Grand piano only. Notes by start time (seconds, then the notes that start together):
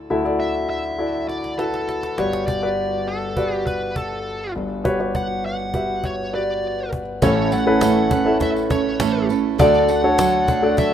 Already playing: E4 F#4 A4 D5
0.10 D2 D3 E4 F#4 A4 E5
0.24 E4 F#4 A4 D5
0.98 E4 F#4 A4 D5
1.58 E4 F#4 A4 B4
2.18 G1 G2 F#4 G4 B4 D5
2.63 F#4 G4 B4 D5
3.37 F#4 G4 B4 D5
4.56 G1 G2
4.84 F#4 G4 B4 C#5
4.99 F#4 G4 B4 C#5
5.74 F#4 G4 B4 E5
6.33 F#4 G4 B4 D5
7.22 A1 A2 A3 C#4 E4 A4 C#5
7.67 A3 C#4 E4 A4 B4
8.25 A3 C#4 E4 A4 E5
9.59 D2 D3 A3 D4 F#4 A4 D5
10.03 A3 D4 F#4 A4 C#5
10.62 A3 D4 F#4 A4 D5